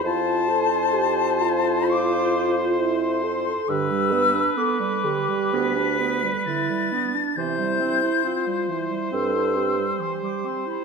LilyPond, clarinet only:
\new Staff \with { instrumentName = "Clarinet" } { \time 4/4 \key c \major \tempo 4 = 67 e'1 | d16 g16 b16 d'16 b16 g16 d16 g16 b16 d'16 b16 g16 d16 g16 b16 d'16 | e16 g16 c'16 e'16 c'16 g16 e16 g16 c'16 e'16 c'16 g16 e16 g16 c'16 e'16 | }